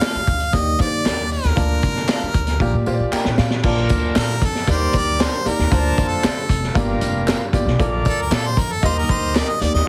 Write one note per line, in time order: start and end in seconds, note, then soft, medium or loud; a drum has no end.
0.00 0.24 A#2 medium
0.00 0.15 A3 medium
0.00 0.25 A#3 medium
0.00 0.15 D4 medium
0.00 0.25 F4 medium
0.00 0.15 F4 medium
0.00 0.26 A4 medium
0.00 0.16 A4 medium
0.00 0.29 D5 medium
0.00 0.56 F5 loud
0.00 snare loud
0.00 clap loud
0.00 closed hi-hat medium
0.00 tambourine medium
0.15 muted upright bass stroke soft
0.27 0.47 D2 medium
0.27 kick medium
0.27 closed hi-hat medium
0.40 closed hi-hat soft
0.53 0.73 D#2 loud
0.53 1.27 D#3 medium
0.53 0.74 A#3 medium
0.53 0.74 D#4 medium
0.53 0.74 G4 medium
0.53 0.75 D5 medium
0.53 0.80 D#5 loud
0.53 kick medium
0.53 closed hi-hat medium
0.53 tambourine soft
0.78 0.99 D#3 medium
0.78 1.36 A#3 medium
0.78 1.36 D#4 medium
0.78 1.36 G4 medium
0.78 0.86 C5 medium
0.78 1.28 D5 loud
0.78 kick medium
0.78 closed hi-hat medium
0.78 tambourine medium
0.86 1.39 D5 medium
1.05 1.36 D#2 medium
1.05 1.18 A#3 medium
1.05 1.18 D4 medium
1.05 1.19 G4 medium
1.05 1.19 A#4 medium
1.05 snare medium
1.05 clap medium
1.05 closed hi-hat medium
1.05 tambourine medium
1.31 2.83 A#4 medium
1.31 open hi-hat soft
1.31 tambourine soft
1.44 1.54 D#2 medium
1.44 snare soft
1.44 closed hi-hat medium
1.56 1.77 D2 medium
1.56 2.30 D3 medium
1.56 2.32 A#3 medium
1.56 2.32 F4 medium
1.56 2.33 D5 medium
1.56 2.32 A5 medium
1.56 kick loud
1.56 closed hi-hat medium
1.56 tambourine soft
1.82 2.03 F1 medium
1.82 kick medium
1.82 closed hi-hat medium
1.82 tambourine medium
1.96 snare soft
2.08 2.21 A3 medium
2.08 2.22 D4 medium
2.08 2.22 F4 medium
2.08 2.22 A4 medium
2.08 snare loud
2.08 clap medium
2.08 closed hi-hat medium
2.08 tambourine loud
2.22 muted upright bass stroke soft
2.34 2.54 D2 medium
2.34 kick medium
2.34 closed hi-hat medium
2.47 snare soft
2.47 closed hi-hat soft
2.60 2.70 A#1 loud
2.60 3.35 A#2 medium
2.60 2.81 A#3 medium
2.60 2.81 F4 medium
2.60 2.82 G4 medium
2.60 2.82 D5 medium
2.60 kick medium
2.60 tambourine soft
2.74 2.84 A#2 medium
2.86 2.97 A#2 medium
2.86 3.43 A#3 medium
2.86 3.43 F4 medium
2.86 3.44 G4 medium
2.86 2.93 C5 medium
2.86 tambourine medium
2.93 3.47 D5 medium
3.00 3.10 A#1 medium
3.12 3.25 A#3 medium
3.12 3.25 D4 medium
3.12 3.26 G4 medium
3.12 3.26 A#4 medium
3.12 3.36 G5 medium
3.12 muted upright bass stroke soft
3.12 clap medium
3.12 tambourine medium
3.25 3.35 A#1 medium
3.25 snare medium
3.38 3.58 A#2 medium
3.38 3.62 F5 medium
3.38 snare medium
3.38 tambourine medium
3.50 snare medium
3.63 3.84 A#1 loud
3.63 4.38 A#2 medium
3.63 4.40 A#3 medium
3.63 4.41 D4 medium
3.63 4.41 F4 medium
3.63 4.40 F4 medium
3.63 4.41 A#4 medium
3.63 4.41 D5 medium
3.63 4.40 A5 medium
3.63 kick loud
3.63 crash medium
3.63 tambourine soft
3.89 4.10 D2 medium
3.89 kick medium
3.89 closed hi-hat medium
3.89 tambourine medium
4.15 4.36 A#2 medium
4.15 4.29 A3 medium
4.15 4.29 D4 medium
4.15 4.30 F4 medium
4.15 4.30 A4 medium
4.15 4.46 A#4 medium
4.15 snare loud
4.15 clap medium
4.15 closed hi-hat medium
4.15 tambourine loud
4.42 4.62 F2 medium
4.42 4.69 A4 medium
4.42 kick medium
4.42 closed hi-hat medium
4.42 tambourine soft
4.55 snare soft
4.66 4.88 D#2 loud
4.66 5.42 G3 medium
4.66 5.24 A#3 medium
4.66 5.24 D#4 medium
4.66 5.25 G4 medium
4.66 5.44 G4 medium
4.66 5.44 A#4 medium
4.66 5.25 D5 medium
4.66 5.44 D5 medium
4.66 kick loud
4.66 closed hi-hat medium
4.66 tambourine soft
4.71 4.99 C5 medium
4.93 5.24 D2 medium
4.93 kick medium
4.93 closed hi-hat medium
4.93 tambourine medium
4.97 5.23 D5 loud
5.19 5.33 A#3 medium
5.19 5.33 D4 medium
5.19 5.33 G4 medium
5.19 5.33 A#4 medium
5.19 5.49 C5 medium
5.19 snare loud
5.19 clap medium
5.19 closed hi-hat medium
5.19 tambourine medium
5.45 5.56 D#2 medium
5.45 5.64 A#3 medium
5.45 5.65 D#4 medium
5.45 5.65 G4 medium
5.45 6.09 A#4 medium
5.45 5.65 D5 medium
5.45 closed hi-hat medium
5.45 tambourine medium
5.59 5.69 D#2 medium
5.59 snare soft
5.71 5.92 D2 medium
5.71 6.46 D3 medium
5.71 6.47 A#3 medium
5.71 6.48 F4 medium
5.71 6.48 C5 medium
5.71 5.78 C5 medium
5.71 6.48 A5 medium
5.71 kick loud
5.71 closed hi-hat medium
5.71 tambourine soft
5.78 6.51 D5 medium
5.98 6.18 F2 medium
5.98 kick loud
5.98 closed hi-hat medium
5.98 tambourine medium
6.08 6.85 A4 medium
6.23 6.44 D3 medium
6.23 6.37 A3 medium
6.23 6.37 D4 medium
6.23 6.37 F4 medium
6.23 6.37 A4 medium
6.23 snare loud
6.23 clap medium
6.23 closed hi-hat medium
6.23 tambourine loud
6.49 6.70 F1 medium
6.49 kick medium
6.49 closed hi-hat medium
6.64 snare soft
6.74 6.96 G1 loud
6.74 7.49 G2 medium
6.74 7.32 A#3 medium
6.74 7.51 F4 medium
6.74 7.32 F4 medium
6.74 7.51 G4 medium
6.74 7.32 G4 medium
6.74 7.51 A#4 medium
6.74 7.33 D5 medium
6.74 kick loud
6.74 closed hi-hat medium
6.74 tambourine soft
7.01 7.32 F1 medium
7.01 closed hi-hat medium
7.01 tambourine medium
7.27 7.40 A#3 medium
7.27 7.41 D4 medium
7.27 7.41 F4 medium
7.27 7.41 A#4 medium
7.27 snare loud
7.27 clap medium
7.27 closed hi-hat medium
7.27 tambourine medium
7.52 7.63 G1 medium
7.52 7.72 A#3 medium
7.52 7.72 F4 medium
7.52 7.72 G4 medium
7.52 7.73 D5 medium
7.52 kick medium
7.52 closed hi-hat medium
7.52 tambourine medium
7.66 7.76 B1 loud
7.66 snare soft
7.79 8.00 A#1 loud
7.79 8.53 A#2 medium
7.79 8.55 A#3 medium
7.79 8.55 D4 medium
7.79 8.55 F4 medium
7.79 8.55 A4 medium
7.79 8.56 A#4 medium
7.79 8.55 D5 medium
7.79 8.56 D5 medium
7.79 kick loud
7.79 closed hi-hat medium
8.05 8.26 D2 medium
8.05 8.23 A4 medium
8.05 kick medium
8.05 closed hi-hat medium
8.05 tambourine medium
8.21 8.36 A#4 medium
8.31 8.51 A#2 medium
8.31 8.44 F3 medium
8.31 8.44 A#3 medium
8.31 8.45 D4 medium
8.31 8.45 A4 medium
8.31 8.48 A4 medium
8.31 snare loud
8.31 clap loud
8.31 closed hi-hat medium
8.31 tambourine loud
8.47 8.62 C5 medium
8.57 8.77 F2 loud
8.57 8.74 A#4 medium
8.57 kick medium
8.57 closed hi-hat medium
8.72 8.84 A4 medium
8.82 9.03 D#2 loud
8.82 9.57 G3 medium
8.82 9.40 A#3 medium
8.82 9.40 D#4 medium
8.82 8.90 F4 medium
8.82 9.59 G4 medium
8.82 9.59 A#4 medium
8.82 9.00 C5 loud
8.82 9.59 D#5 loud
8.82 9.40 D#5 medium
8.82 kick medium
8.82 closed hi-hat medium
8.82 tambourine soft
8.90 9.43 G4 medium
8.98 9.12 A#4 loud
9.09 9.39 D2 medium
9.09 9.37 C5 medium
9.09 kick medium
9.09 closed hi-hat medium
9.09 tambourine medium
9.35 9.48 A#3 medium
9.35 9.48 D4 medium
9.35 9.48 G4 medium
9.35 9.49 A#4 medium
9.35 9.50 D5 medium
9.35 snare loud
9.35 clap medium
9.35 closed hi-hat medium
9.35 tambourine medium
9.49 9.63 D#5 loud
9.60 9.71 D#2 medium
9.60 9.80 A#3 medium
9.60 9.80 D#4 medium
9.60 9.80 G4 medium
9.60 9.73 D5 medium
9.60 9.80 D5 medium
9.60 closed hi-hat medium
9.60 tambourine soft
9.74 9.84 D#2 medium
9.74 9.88 D#5 medium
9.74 snare soft